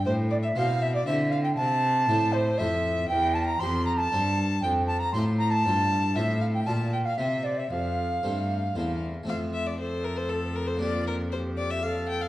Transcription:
<<
  \new Staff \with { instrumentName = "Flute" } { \time 3/4 \key a \minor \tempo 4 = 118 c''8 d''16 e''16 f''8 e''16 d''16 e''8 f''16 g''16 | a''4. c''8 e''4 | \key f \major g''8 a''16 bes''16 c'''8 bes''16 a''8. r8 | g''8 a''16 bes''16 c'''8 bes''16 a''4~ a''16 |
e''8 f''16 g''16 a''8 g''16 f''16 e''8 d''16 e''16 | f''2~ f''8 r8 | f'4 a'2 | f'4 g'4 a'4 | }
  \new Staff \with { instrumentName = "Violin" } { \time 3/4 \key a \minor c''8 d''16 e''16 f''8 e''16 d''16 e''8 f''16 g''16 | a''4. c''8 e''4 | \key f \major g''8 a''16 bes''16 c'''8 bes''16 a''4~ a''16 | g''8 a''16 bes''16 c'''8 bes''16 a''4~ a''16 |
e''8 f''16 g''16 a''8 g''16 f''16 e''8 d''16 e''16 | f''2~ f''8 r8 | f''8 e''16 d''16 c''8 bes'16 c''16 a'8 bes'16 c''16 | d''8 bes'8 c''8 d''16 e''16 f''8 g''16 f''16 | }
  \new Staff \with { instrumentName = "Harpsichord" } { \time 3/4 \key a \minor r4 <c' e' c''>4 <c' e' c''>4 | r4 <c' e' c''>4 <c' e' c''>4 | \key f \major r4 <c' g' c''>4 <c' g' c''>4 | r4 <c' f' c''>4 <c' f' c''>4 |
<c' f' c''>4 <f' d''>4 <c' c''>4 | r4 <a c' c''>4 <a c' c''>4 | <a c' a'>2. | <bes d' g'>2. | }
  \new Staff \with { instrumentName = "Harpsichord" } { \clef bass \time 3/4 \key a \minor a,4 b,4 d4 | c4 a,4 f,4 | \key f \major e,4 f,4 g,4 | f,4 a,4 g,4 |
a,4 bes,4 c4 | f,4 g,4 e,4 | f,2.~ | f,2. | }
  \new Staff \with { instrumentName = "Cello" } { \clef bass \time 3/4 \key a \minor a,4 b,4 d4 | c4 a,4 f,4 | \key f \major e,4 f,4 g,4 | f,4 a,4 g,4 |
a,4 bes,4 c4 | f,4 g,4 e,4 | f,2.~ | f,2. | }
>>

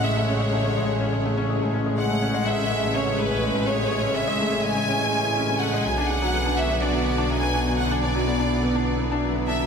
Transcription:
<<
  \new Staff \with { instrumentName = "Violin section" } { \time 4/4 \key a \major \tempo 4 = 124 e''8 cis''2 r4. | fis''4 e''4 cis''8 b'4 cis''8~ | cis''8 e''4 gis''2 fis''8 | gis''8 fis''4 e''8 d''4 gis''4 |
fis''8 d''2 r4 e''8 | }
  \new Staff \with { instrumentName = "Analog synth pad" } { \time 4/4 \key a \major << { gis'1~ | gis'1~ | gis'1 | fis'1 |
e'1 | } \\ { cis1~ | cis1~ | cis1 | <d b>1~ |
<d b>1 | } >> }
  \new Staff \with { instrumentName = "Felt piano" } { \time 4/4 \key a \major gis16 a16 cis'16 gis16 a16 cis'16 gis16 a16 cis'16 gis16 a16 cis'16 gis16 a16 cis'16 gis16 | gis16 a16 cis'16 gis16 a16 cis'16 gis16 a16 cis'16 gis16 a16 cis'16 gis16 a16 cis'16 gis16 | gis16 a16 cis'16 gis16 a16 cis'16 gis16 a16 cis'16 gis16 cis'16 e'16 cis'16 cis'16 a'16 gis16 | fis16 d'16 d'16 fis16 b16 d'16 fis16 b16 d'16 fis16 b16 d'16 fis16 b16 d'16 fis16 |
fis16 d'16 d'16 fis16 b16 d'16 fis16 b16 d'16 fis16 b16 d'16 fis16 b16 d'16 fis16 | }
  \new Staff \with { instrumentName = "Double bass section" } { \clef bass \time 4/4 \key a \major a,,1~ | a,,1~ | a,,1 | b,,1~ |
b,,1 | }
>>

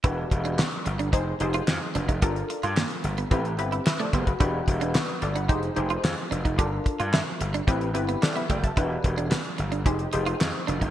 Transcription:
<<
  \new Staff \with { instrumentName = "Analog polysynth" } { \time 4/4 \key e \minor \tempo 4 = 110 << { r1 | r2. <b' e''>16 <a' d''>16 <g' c''>16 <fis' b'>16~ | <fis' b'>16 r8. <fis' b'>8 <a' d''>16 <b' fis''>8 r4. r16 | r2. <a' d''>16 <b' e''>16 <d'' g''>16 <e'' a''>16~ |
<e'' a''>16 r2. r8. | } \\ { <d' fis' g' b'>4 r4 <ees' g' aes' c''>8 <ees' g' aes' c''>4 r8 | <d' f' a' bes'>4 r4 <c' e' g' b'>8 <c' e' g' b'>4 r8 | <d' fis' g' b'>4 r4 <ees' g' aes' c''>8 <ees' g' aes' c''>4 r8 | <d' f' a' bes'>4 r4 <c' e' g' b'>8 <c' e' g' b'>4 r8 |
<d' fis' g' b'>4 r4 <ees' g' aes' c''>8 <ees' g' aes' c''>4 r8 | } >> }
  \new Staff \with { instrumentName = "Clean electric guitar" } { \time 4/4 \key e \minor e'16 r8 d'16 b16 r8 d'16 ees'16 r8 f'16 r8 d'16 ees'16 | g'16 r8 f'16 bes16 r8 b16 c'16 r8 e'16 r16 a16 b16 r16 | e'16 r8 d'16 b16 r8 d'16 ees'16 r8 f'16 r8 d'16 ees'16 | g'16 r8 f'16 e'16 r8 d'16 c'16 r8 b16 r16 b16 a16 r16 |
e'16 r8 d'16 b16 r8 d'16 ees'16 r8 f'16 r8 d'16 ees'16 | }
  \new Staff \with { instrumentName = "Slap bass" } { \clef bass \time 4/4 \key e \minor e,,8 e,,8. r16 g,,8 f,,8 f,,8 f,16 r16 f,,16 f,,16 | g,,8 r16 g,8 r16 g,,8 a,,8 g,,8 r8 fis,,8 | e,,8 e,,8. r16 g,,8 f,,8 f,,8 f,16 r16 f,,16 f,,16 | g,,8 r16 g,8 r16 g,,8 a,,8 g,,8 r8 fis,,8 |
e,,8 e,,8. r16 g,,8 f,,8 f,,8 f,16 r16 f,,16 f,,16 | }
  \new DrumStaff \with { instrumentName = "Drums" } \drummode { \time 4/4 <hh bd>8 <hh bd>16 hh16 <hc sn>16 hh16 hh16 hh16 <hh bd>8 hh16 hh16 <hc sn>8 hh16 <hh bd>16 | <hh bd>16 hh16 hh16 hh16 <hc sn>16 hh16 hh16 hh16 <hh bd>16 hh16 hh16 hh16 <hc sn>16 hh16 <hh bd>16 <hh bd>16 | <hh bd>8 <hh bd>16 hh16 <hc sn>16 hh16 hh16 hh16 <hh bd>16 hh16 hh16 hh16 <hc sn>16 hh16 hh16 <hh bd>16 | <hh bd>8 <hh bd>16 hh16 <hc sn>8 hh16 hh16 <hh bd>16 hh16 hh16 hh16 <hc sn>16 hh16 <hh bd>16 <hh bd>16 |
<hh bd>8 <hh bd>16 hh16 <hc sn>16 hh16 hh16 hh16 <hh bd>16 hh16 hh16 hh16 <hc sn>8 hh16 <hh bd>16 | }
>>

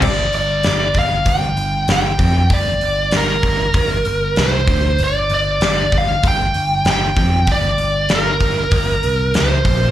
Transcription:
<<
  \new Staff \with { instrumentName = "Lead electric guitar" } { \time 4/4 \key g \minor \tempo 4 = 97 d''8 d''4 f''8 g''4 g''4 | d''4 bes'2 c''4 | d''8 d''4 f''8 g''4 g''4 | d''4 bes'2 c''4 | }
  \new Staff \with { instrumentName = "Picked electric bass" } { \clef bass \time 4/4 \key g \minor g,,8 g,,8 g,,4 g,,8 g,,8 g,,8 f,8 | g,,8 g,,8 g,,4 g,,8 g,,8 c,8 d,8 | g,,8 g,,8 g,,4 g,,8 g,,8 g,,8 f,8 | g,,8 g,,8 g,,4 g,,8 c,8 cis,8 bes,,8 | }
  \new DrumStaff \with { instrumentName = "Drums" } \drummode { \time 4/4 <cymc bd>8 hho8 <hho sn>8 <hho bd>8 <hho bd>8 hho8 <hho sn>8 <hho bd>8 | <hho bd>8 hho8 <hho sn>8 <hho bd>8 <hho bd>8 hho8 <hho sn>8 <hho bd>8 | hho8 hho8 <hho sn>8 <hho bd>8 <hho bd>8 hho8 <hho sn>8 <hho bd>8 | <hho bd>8 hho8 <hho sn>8 <hho bd>8 <hho bd>8 hho8 <hho sn>8 <hho bd>8 | }
>>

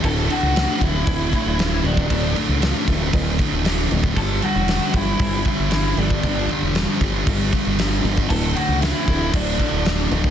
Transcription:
<<
  \new Staff \with { instrumentName = "Lead electric guitar" } { \time 4/4 \key d \major \tempo 4 = 116 <a' a''>8 <fis' fis''>4 <e' e''>2 <d' d''>8~ | <d' d''>8 r2. r8 | <a' a''>8 <fis' fis''>4 <e' e''>4 <e' e''>4 <d' d''>8~ | <d' d''>8 r2. r8 |
<a' a''>8 <fis' fis''>8 <e' e''>4 <d' d''>2 | }
  \new Staff \with { instrumentName = "Distorted electric guitar" } { \clef bass \time 4/4 \key d \major <d, a, d>8 <d, a, d>8 <d, a, d>8 <d, a, d>8 <d, a, d>8 <d, a, d>8 <d, a, d>8 <d, a, d>8 | <d, a, d>8 <d, a, d>8 <d, a, d>8 <d, a, d>8 <d, a, d>8 <d, a, d>8 <d, a, d>8 <d, a, d>8 | <g, d g>8 <g, d g>8 <g, d g>8 <g, d g>8 <g, d g>8 <g, d g>8 <g, d g>8 <g, d g>8 | <g, d g>8 <g, d g>8 <g, d g>8 <g, d g>8 <g, d g>8 <g, d g>8 <g, d g>8 <g, d g>8 |
<d, a, d>8 <d, a, d>8 <d, a, d>8 <d, a, d>8 <d, a, d>8 <d, a, d>8 <d, a, d>8 <d, a, d>8 | }
  \new Staff \with { instrumentName = "Fingered electric bass" } { \clef bass \time 4/4 \key d \major d,,8 r16 cis,8 r16 d,,8 d,,8 r16 d,,8. d,,8 | d,,8 r16 cis,8 r16 d,,8 d,,8 r16 d,,8. d,,8 | g,,8 r16 e,,8 r16 g,,8 g,,8 r16 g,,8. g,,8 | g,,8 r16 e,,8 r16 g,,8 g,,8 r16 g,,8. g,,8 |
d,,8 r16 cis,8 r16 d,,8 d,,8 r16 d,,8. d,,8 | }
  \new DrumStaff \with { instrumentName = "Drums" } \drummode { \time 4/4 <cymc bd>8 cymc8 <cymc sn>8 <cymc bd>8 <cymc bd>8 <cymc bd>8 <cymc sn>8 cymc16 bd16 | <cymc bd>8 cymc8 <cymc sn>8 <cymc bd>8 <cymc bd>8 <cymc bd>8 <cymc sn>8 cymc16 bd16 | <cymc bd>8 cymc8 <cymc sn>8 <cymc bd>8 <cymc bd>8 <cymc bd>8 <cymc sn>8 cymc16 bd16 | <cymc bd>8 cymc8 <cymc sn>8 <cymc bd>8 <cymc bd>8 <cymc bd>8 <cymc sn>8 cymc16 bd16 |
<cymc bd>8 cymc8 <cymc sn>8 <cymc bd>8 <cymc bd>8 <cymc bd>8 <cymc sn>8 cymc16 bd16 | }
>>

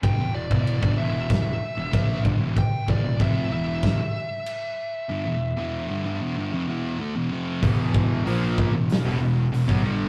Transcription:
<<
  \new Staff \with { instrumentName = "Lead electric guitar" } { \time 4/4 \key e \minor \tempo 4 = 95 g''8 d''4 e''8 e''4. r8 | g''8 d''8 e''8 e''2~ e''8~ | e''2. r4 | \key e \phrygian r1 | }
  \new Staff \with { instrumentName = "Distorted electric guitar" } { \clef bass \time 4/4 \key e \minor <g, d>16 <e, b,>8 <e, b, e>8 <g, d>16 <e, b, e>8 <e, b,>8 r16 <e, b,>16 <ais, f ais>8 <g, d>16 <e, b,>16 | r8 <e, b,>16 <e, b,>16 <f, c f>8 <e, b, e>8. r4. r16 | <g, d>16 <e, b,>8 <e, b, e>8 <g, d>16 <g, d>16 <e, b,>16 <g, d>16 <f, c>16 <e, b, e>8 <d a>16 <e, b,>16 <f, c f>8 | \key e \phrygian <e, b, e>4 <ais, f ais>8. <e, b,>8 <e, b,>16 <e, b,>8 <e, b,>16 <b, fis>16 <g, d g>8 | }
  \new Staff \with { instrumentName = "Distorted electric guitar" } { \clef bass \time 4/4 \key e \minor <g, d>16 <e, b,>8 <e, b, e>8 <g, d>16 <e, b, e>8 <e, b,>8 r16 <e, b,>16 <ais, f ais>8 <g, d>16 <e, b,>16 | r8 <e, b,>16 <e, b,>16 <f, c f>8 <e, b, e>8. r4. r16 | <g, d>16 <e, b,>8 <e, b, e>8 <g, d>16 <g, d>16 <e, b,>16 <g, d>16 <f, c>16 <e, b, e>8 <d a>16 <e, b,>16 <f, c f>8 | \key e \phrygian <e, b, e>4 <ais, f ais>8. <e, b,>8 <e, b,>16 <e, b,>8 <e, b,>16 <b, fis>16 <g, d g>8 | }
  \new Staff \with { instrumentName = "Overdriven electric guitar" } { \clef bass \time 4/4 \key e \minor r1 | r1 | r1 | \key e \phrygian <e, b, e>4 <ais, f ais>8. <e, b,>8 <e, b,>16 <e, b,>8 <e, b,>16 <b, fis>16 <g, d g>8 | }
  \new Staff \with { instrumentName = "Fingered electric bass" } { \clef bass \time 4/4 \key e \minor g,,16 e,,8 e,,8 g,,16 e,,8 e,,8 r16 e,,16 ais,,8 g,,16 e,,16 | r8 e,,16 e,,16 f,,8 e,,8. r4. r16 | r1 | \key e \phrygian e,,4 ais,,8. e,,8 e,,16 e,,8 e,,16 b,,16 g,,8 | }
  \new DrumStaff \with { instrumentName = "Drums" } \drummode { \time 4/4 <cymc bd>8. bd16 cymc16 bd8. <cymc bd sn>4 <cymc bd>8 bd8 | <cymc bd>8 bd8 <cymc bd>4 <cymc bd sn>4 cymc4 | r4 r4 r4 r4 | <hho bd>8 bd8 hho8 bd8 <hho sn>4 hho16 bd8. | }
>>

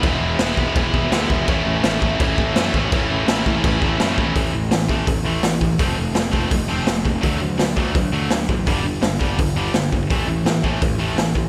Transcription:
<<
  \new Staff \with { instrumentName = "Overdriven electric guitar" } { \time 4/4 \key a \major \tempo 4 = 167 <e gis b e'>4 <e gis b e'>8 <e gis b e'>8 <e gis b e'>4 <e gis b e'>8 <e gis b e'>8 | <a, e a cis' e'>4 <a, e a cis' e'>8 <a, e a cis' e'>8 <a, e a cis' e'>4 <a, e a cis' e'>8 <a, e a cis' e'>8 | <a, e a cis' e'>4 <a, e a cis' e'>8 <a, e a cis' e'>8 <a, e a cis' e'>4 <a, e a cis' e'>8 <a, e a cis' e'>8 | \key d \major r1 |
r1 | r1 | r1 | r1 | }
  \new Staff \with { instrumentName = "Distorted electric guitar" } { \clef bass \time 4/4 \key a \major <e gis b e'>4 <e gis b e'>8 <e gis b e'>8 <e gis b e'>4 <e gis b e'>8 <e gis b e'>8 | <a, e a cis' e'>4 <a, e a cis' e'>8 <a, e a cis' e'>8 <a, e a cis' e'>4 <a, e a cis' e'>8 <a, e a cis' e'>8 | <a, e a cis' e'>4 <a, e a cis' e'>8 <a, e a cis' e'>8 <a, e a cis' e'>4 <a, e a cis' e'>8 <a, e a cis' e'>8 | \key d \major <a, e a>8 <a, e>8 <a, e>8 <a, e a>8 <a, e>8 <a, e a>8 <a, e>8 <a, e>8 |
<f a c'>8 <f a>8 <f a>8 <f a c'>8 <f a>8 <f a c'>8 <f a>8 <f a>8 | <d fis a>8 <d fis>8 <d fis>8 <d fis a>8 <d fis>8 <d fis a>8 <d fis>8 <d fis>8 | <g, d g>8 <g, d>8 <g, d>8 <g, d g>8 <g, d>8 <g, d g>8 <g, d>8 <g, d>8 | <a, e a>8 <a, e>8 <a, e>8 <a, e a>8 <a, e>8 <a, e a>8 <a, e>8 <a, e>8 | }
  \new Staff \with { instrumentName = "Distorted electric guitar" } { \clef bass \time 4/4 \key a \major <e, b, e>2~ <e, b, e>8 <e, b, e>8 <e, b, e>4 | <a, e a>2~ <a, e a>8 <a, e a>8 <a, e a>4 | <a, e a>2~ <a, e a>8 <a, e a>8 <a, e a>4 | \key d \major r1 |
r1 | r1 | r1 | r1 | }
  \new Staff \with { instrumentName = "Picked electric bass" } { \clef bass \time 4/4 \key a \major e,,8 e,,8 e,,8 e,,8 e,,8 e,,8 d,8 e,,8 | a,,8 a,,8 a,,8 a,,8 a,,8 a,,8 fis,8 a,,8 | a,,8 a,,8 a,,8 a,,8 a,,8 a,,8 fis,8 a,,8 | \key d \major a,,8 a,,8 a,,8 a,,8 a,,8 a,,8 a,,8 a,,8 |
f,,8 f,,8 f,,8 f,,8 f,,8 f,,8 f,,8 f,,8 | d,8 d,8 d,8 d,8 d,8 d,8 d,8 a,,8 | g,,8 g,,8 g,,8 g,,8 g,,8 g,,8 g,,8 g,,8 | a,,8 a,,8 a,,8 a,,8 a,,8 a,,8 a,,8 a,,8 | }
  \new DrumStaff \with { instrumentName = "Drums" } \drummode { \time 4/4 <cymc bd>4 <cymc sn>8 bd8 <cymc bd>8 bd8 <cymc sn>8 bd8 | <cymc bd>4 <cymc sn>8 bd8 <cymc bd>8 bd8 <cymc sn>8 bd8 | <cymc bd>4 <cymc sn>8 bd8 <cymc bd>8 bd8 <cymc sn>8 bd8 | <hho bd>4 <hho sn>8 bd8 <hho bd>4 <hho sn>8 bd8 |
<hho bd>4 <hho sn>8 bd8 <hho bd>4 <hho sn>8 bd8 | <hho bd>4 <hho sn>8 bd8 <hho bd>4 <hho sn>8 bd8 | <hho bd>4 <hho sn>8 bd8 <hho bd>4 <hho sn>8 bd8 | <hho bd>4 <hho sn>8 bd8 <hho bd>4 <hho sn>8 bd8 | }
>>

